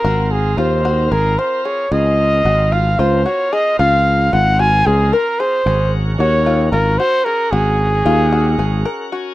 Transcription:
<<
  \new Staff \with { instrumentName = "Trumpet" } { \time 7/8 \key aes \mixolydian \tempo 4 = 112 bes'8 aes'8 c''4 bes'8 c''8 des''8 | ees''4. f''8 c''8 des''8 ees''8 | f''4 ges''8 aes''8 aes'8 bes'8 c''8~ | c''8 r8 des''4 bes'8 c''8 bes'8 |
aes'2. r8 | }
  \new Staff \with { instrumentName = "Five-string banjo" } { \time 7/8 \key aes \mixolydian ges'4 f'8 ges'8 aes'8 bes'8 aes'8 | aes'4 ges'8 f'8 f'8 ges'8 aes'8 | f'4 f'8 ges'8 aes'8 bes'8 aes'8 | aes'4 ges'8 f'8 f'8 ges'8 aes'8 |
ges'4 f'8 ges'8 aes'8 bes'8 ges'8 | }
  \new Staff \with { instrumentName = "Tonewheel organ" } { \time 7/8 \key aes \mixolydian << { r2. r8 | r2. r8 | r2. r8 | r2. r8 |
r2 r8 ges''8 aes''8 | } \\ { <c' f' bes'>2.~ <c' f' bes'>8 | <c' f' bes'>2.~ <c' f' bes'>8~ | <c' f' bes'>2.~ <c' f' bes'>8 | <des' ges' bes'>2.~ <des' ges' bes'>8~ |
<des' ges' bes'>2.~ <des' ges' bes'>8 | } >> }
  \new Staff \with { instrumentName = "Fretless electric bass" } { \clef bass \time 7/8 \key aes \mixolydian aes,,4 ees,4 aes,,8 r4 | des,4 aes,,4 des,8 r4 | des,4 aes,,4 des,8 r4 | aes,,4 ees,4 aes,,8 r4 |
aes,,4 ees,4 aes,,8 r4 | }
>>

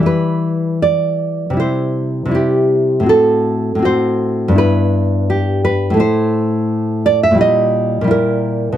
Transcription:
\new Staff \with { instrumentName = "Nylon-string guitar" } { \time 2/4 \key e \minor \tempo 4 = 83 << { b'4 d''4 | c''4 g'4 | a'4 c''4 | b'4 g'8 b'8 |
c''4. d''16 e''16 | dis''4 bes'4 | } \\ { <e g e'>2 | <c g e'>4 <c g e'>4 | <a, c' fis'>4 <a, c' fis'>4 | <g, b e'>2 |
<a, a e'>2 | <bes, g e'>4 <bes, g e'>4 | } >> }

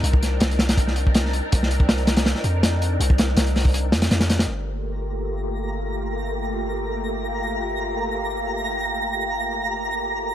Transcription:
<<
  \new Staff \with { instrumentName = "Synth texture" } { \time 4/4 \key g \minor \tempo 4 = 162 r1 | r1 | r1 | bes''1~ |
bes''1~ | bes''1~ | bes''1 | }
  \new Staff \with { instrumentName = "String machine" } { \time 4/4 \key g \minor <c' d' ees' bes'>1~ | <c' d' ees' bes'>1~ | <c' d' ees' bes'>1 | <a bes f' g'>1~ |
<a bes f' g'>1~ | <a bes f' g'>1~ | <a bes f' g'>1 | }
  \new Staff \with { instrumentName = "808-style bass" } { \clef bass \time 4/4 \key g \minor c,4 c,2~ c,8 r8 | c,2 r8 f,4. | c,4 c,4. f,8 f,4 | g,,1~ |
g,,1~ | g,,1~ | g,,1 | }
  \new DrumStaff \with { instrumentName = "Drums" } \drummode { \time 4/4 hh16 bd16 <hh sn>8 <hh sn>16 hh16 <hh sn>16 <hh sn>16 <hh bd>16 sn16 hh16 bd16 <hh sn>16 sn16 hh8 | <hh bd>16 sn16 hh16 bd16 <hh sn>16 hh16 <hh sn>16 <hh sn>16 <hh sn>16 sn16 hh8 <hh sn>8 hh8 | hh16 bd16 <hh sn>8 <hh sn>16 hh16 <hho sn>16 bd16 hh8 <hh sn>16 <hh sn>16 <hh sn>16 <hh sn>16 <hh sn>16 <hh sn>16 | r4 r4 r4 r4 |
r4 r4 r4 r4 | r4 r4 r4 r4 | r4 r4 r4 r4 | }
>>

